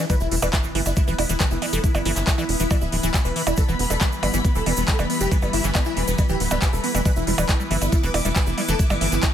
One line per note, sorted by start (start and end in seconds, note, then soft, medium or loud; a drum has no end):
0.00 0.12 E4 medium
0.10 9.34 E3 medium
0.10 0.16 E3 loud
0.10 3.60 B3 medium
0.10 9.34 E4 medium
0.10 0.16 B4 loud
0.10 kick loud
0.10 closed hi-hat medium
0.10 percussion blips soft
0.10 impact medium
0.10 shaker medium
0.20 0.28 E1 medium
0.20 0.27 E4 medium
0.20 shaker soft
0.31 0.39 E1 loud
0.31 0.36 E3 medium
0.31 0.38 E4 medium
0.31 open hi-hat loud
0.42 0.50 E1 medium
0.42 0.49 E3 loud
0.42 0.49 B4 medium
0.42 closed hi-hat medium
0.42 percussion blips medium
0.42 shaker medium
0.53 0.60 E4 medium
0.53 kick loud
0.53 clap loud
0.53 closed hi-hat medium
0.53 shaker medium
0.63 0.68 E3 medium
0.63 shaker soft
0.67 9.34 B4 medium
0.75 0.82 G1 medium
0.75 0.81 E3 loud
0.75 0.82 E4 medium
0.75 open hi-hat medium
0.86 0.93 G1 medium
0.86 0.92 E4 medium
0.86 closed hi-hat medium
0.86 percussion blips soft
0.86 shaker medium
0.96 1.01 E3 medium
0.96 1.03 E4 medium
0.96 kick loud
0.96 closed hi-hat medium
0.96 shaker medium
1.03 8.01 B5 medium
1.08 1.15 E1 medium
1.08 1.14 E3 loud
1.08 1.14 B4 medium
1.08 shaker soft
1.18 1.26 E1 loud
1.18 1.25 E4 medium
1.18 open hi-hat loud
1.18 percussion blips medium
1.29 1.37 E1 medium
1.29 1.34 E3 medium
1.29 1.36 E4 medium
1.29 closed hi-hat medium
1.29 shaker medium
1.40 1.47 E3 loud
1.40 1.47 B4 loud
1.40 kick loud
1.40 clap loud
1.40 closed hi-hat medium
1.40 shaker medium
1.51 1.58 F1 medium
1.51 1.58 E4 medium
1.51 shaker soft
1.62 1.66 E3 medium
1.62 1.69 E4 medium
1.62 open hi-hat medium
1.62 percussion blips soft
1.73 1.80 F1 medium
1.73 1.79 E3 loud
1.73 1.79 A4 loud
1.73 closed hi-hat medium
1.73 shaker medium
1.84 1.90 E4 medium
1.84 kick loud
1.84 closed hi-hat medium
1.84 shaker medium
1.95 2.02 G1 medium
1.95 1.99 E3 medium
1.95 2.01 E4 medium
1.95 percussion blips medium
1.95 shaker soft
2.05 2.13 G1 loud
2.05 2.12 E3 loud
2.05 2.12 E4 loud
2.05 open hi-hat loud
2.16 2.24 G1 medium
2.16 2.23 E4 medium
2.16 clap soft
2.16 closed hi-hat medium
2.16 shaker medium
2.27 2.31 E3 medium
2.27 2.34 E4 medium
2.27 kick loud
2.27 clap loud
2.27 closed hi-hat medium
2.27 shaker medium
2.38 2.44 E3 loud
2.38 2.45 E4 medium
2.38 percussion blips soft
2.38 shaker soft
2.49 2.56 E1 medium
2.49 2.56 E4 medium
2.49 open hi-hat medium
2.60 2.67 E1 medium
2.60 2.64 E3 medium
2.60 2.66 E4 medium
2.60 closed hi-hat medium
2.60 shaker medium
2.71 2.77 E3 loud
2.71 2.77 E4 medium
2.71 kick loud
2.71 closed hi-hat medium
2.71 percussion blips medium
2.71 shaker medium
2.81 2.89 D1 medium
2.81 2.88 E4 medium
2.81 shaker soft
2.92 3.00 D1 loud
2.92 2.97 E3 medium
2.92 2.99 E4 medium
2.92 open hi-hat loud
3.03 3.10 D1 medium
3.03 3.10 E3 loud
3.03 3.10 E4 medium
3.03 closed hi-hat medium
3.03 shaker medium
3.14 3.21 E4 medium
3.14 kick loud
3.14 clap loud
3.14 closed hi-hat medium
3.14 percussion blips soft
3.14 shaker medium
3.25 3.32 E1 medium
3.25 3.29 E3 medium
3.25 3.32 B4 loud
3.25 shaker soft
3.36 3.42 E3 loud
3.36 3.42 E4 medium
3.36 open hi-hat loud
3.47 3.54 E1 medium
3.47 3.53 E4 medium
3.47 closed hi-hat medium
3.47 percussion blips medium
3.47 shaker medium
3.57 3.62 E3 medium
3.57 7.08 G3 medium
3.57 3.64 A4 loud
3.57 kick loud
3.57 closed hi-hat medium
3.57 shaker medium
3.68 3.76 E1 medium
3.68 3.75 E3 loud
3.68 3.75 B3 medium
3.68 shaker soft
3.79 3.87 E1 loud
3.79 3.86 B3 medium
3.79 open hi-hat loud
3.90 3.97 E1 medium
3.90 3.94 E3 medium
3.90 3.97 A4 medium
3.90 closed hi-hat medium
3.90 percussion blips soft
3.90 shaker medium
4.01 4.07 E3 loud
4.01 4.08 B3 medium
4.01 kick loud
4.01 clap loud
4.01 closed hi-hat medium
4.01 shaker medium
4.12 shaker soft
4.23 4.30 G1 medium
4.23 4.27 E3 medium
4.23 4.29 B3 medium
4.23 open hi-hat medium
4.23 percussion blips medium
4.34 4.41 G1 medium
4.34 4.40 E3 loud
4.34 4.40 B3 medium
4.34 closed hi-hat medium
4.34 shaker medium
4.45 4.51 B3 medium
4.45 kick loud
4.45 closed hi-hat medium
4.45 shaker medium
4.55 4.63 E1 medium
4.55 4.60 E3 medium
4.55 4.62 A4 medium
4.55 shaker soft
4.66 4.74 E1 loud
4.66 4.73 E3 loud
4.66 4.73 B3 medium
4.66 open hi-hat loud
4.66 percussion blips soft
4.77 4.84 E1 medium
4.77 4.84 B3 medium
4.77 closed hi-hat medium
4.77 shaker medium
4.88 4.92 E3 medium
4.88 4.95 A4 loud
4.88 kick loud
4.88 clap loud
4.88 closed hi-hat medium
4.88 shaker medium
4.99 5.06 F1 medium
4.99 5.05 E3 loud
4.99 5.05 B3 medium
4.99 percussion blips medium
4.99 shaker soft
5.10 5.16 B3 medium
5.10 open hi-hat loud
5.21 5.28 F1 medium
5.21 5.25 E3 medium
5.21 5.27 G4 loud
5.21 closed hi-hat medium
5.21 shaker medium
5.31 5.38 E3 loud
5.31 5.38 B3 medium
5.31 kick loud
5.31 closed hi-hat medium
5.31 shaker medium
5.42 5.50 G1 medium
5.42 5.49 B3 medium
5.42 percussion blips soft
5.42 shaker soft
5.53 5.61 G1 loud
5.53 5.58 E3 medium
5.53 5.60 E4 loud
5.53 open hi-hat loud
5.64 5.71 G1 medium
5.64 5.71 E3 loud
5.64 5.71 B3 medium
5.64 clap soft
5.64 closed hi-hat medium
5.64 shaker medium
5.75 5.82 B3 medium
5.75 kick loud
5.75 clap loud
5.75 closed hi-hat medium
5.75 percussion blips medium
5.75 shaker medium
5.85 5.90 E3 medium
5.85 5.92 E4 loud
5.85 shaker soft
5.97 6.04 E1 medium
5.97 6.03 E3 loud
5.97 6.03 B3 medium
5.97 open hi-hat loud
6.08 6.15 E1 medium
6.08 6.14 B3 medium
6.08 closed hi-hat medium
6.08 shaker medium
6.18 6.23 E3 medium
6.18 6.25 B3 medium
6.18 kick loud
6.18 closed hi-hat medium
6.18 percussion blips soft
6.18 shaker medium
6.29 6.37 D1 medium
6.29 6.36 E3 loud
6.29 6.36 G4 medium
6.29 shaker soft
6.40 6.47 D1 loud
6.40 6.47 B3 medium
6.40 open hi-hat loud
6.50 6.58 D1 medium
6.50 6.55 E3 medium
6.50 6.58 B3 medium
6.50 closed hi-hat medium
6.50 percussion blips medium
6.50 shaker medium
6.62 6.68 E3 loud
6.62 6.69 B3 medium
6.62 kick loud
6.62 clap loud
6.62 closed hi-hat medium
6.62 shaker medium
6.73 6.80 E1 medium
6.73 6.79 A4 loud
6.73 shaker soft
6.84 6.88 E3 medium
6.84 6.90 B3 medium
6.84 open hi-hat medium
6.95 7.02 E1 medium
6.95 7.01 E3 loud
6.95 7.01 B3 medium
6.95 closed hi-hat medium
6.95 percussion blips soft
6.95 shaker medium
7.05 7.12 E3 loud
7.05 9.34 B3 medium
7.05 7.12 B4 loud
7.05 kick loud
7.05 closed hi-hat medium
7.05 percussion blips soft
7.05 shaker medium
7.16 7.24 E1 medium
7.16 7.23 E4 medium
7.16 shaker soft
7.27 7.34 E1 loud
7.27 7.31 G3 medium
7.27 7.34 E4 medium
7.27 open hi-hat loud
7.38 7.45 E1 medium
7.38 7.44 E3 loud
7.38 7.45 B4 medium
7.38 closed hi-hat medium
7.38 percussion blips medium
7.38 shaker medium
7.48 7.55 E4 medium
7.48 kick loud
7.48 clap loud
7.48 closed hi-hat medium
7.48 shaker medium
7.60 7.64 G3 medium
7.60 shaker soft
7.71 7.78 G1 medium
7.71 7.77 E3 loud
7.71 7.77 E4 medium
7.71 open hi-hat medium
7.82 7.89 G1 medium
7.82 7.88 E4 medium
7.82 closed hi-hat medium
7.82 percussion blips soft
7.82 shaker medium
7.92 7.97 G3 medium
7.92 7.99 E4 medium
7.92 kick loud
7.92 closed hi-hat medium
7.92 shaker medium
7.99 9.34 D6 medium
8.03 8.11 E1 medium
8.03 8.10 E3 loud
8.03 8.10 B4 loud
8.03 shaker soft
8.14 8.21 E1 loud
8.14 8.21 E4 medium
8.14 open hi-hat loud
8.14 percussion blips medium
8.25 8.32 E1 medium
8.25 8.29 G3 medium
8.25 8.32 E4 medium
8.25 closed hi-hat medium
8.25 shaker medium
8.35 8.42 E3 loud
8.35 8.42 B4 medium
8.35 kick loud
8.35 clap loud
8.35 closed hi-hat medium
8.35 shaker medium
8.47 8.54 F1 medium
8.47 8.53 E4 medium
8.47 shaker soft
8.58 8.62 G3 medium
8.58 8.64 E4 medium
8.58 open hi-hat medium
8.58 percussion blips soft
8.68 8.76 F1 medium
8.68 8.75 E3 loud
8.68 8.75 A4 loud
8.68 closed hi-hat medium
8.68 shaker medium
8.79 8.86 E4 medium
8.79 kick loud
8.79 closed hi-hat medium
8.79 shaker medium
8.90 8.97 G1 medium
8.90 8.94 G3 medium
8.90 8.97 E4 medium
8.90 percussion blips medium
8.90 shaker soft
9.01 9.08 G1 loud
9.01 9.07 E3 loud
9.01 9.08 E4 loud
9.01 open hi-hat loud
9.12 9.19 G1 medium
9.12 9.19 E4 medium
9.12 clap soft
9.12 closed hi-hat medium
9.12 shaker medium
9.23 9.27 G3 medium
9.23 9.29 E4 medium
9.23 kick loud
9.23 clap loud
9.23 closed hi-hat medium
9.23 shaker medium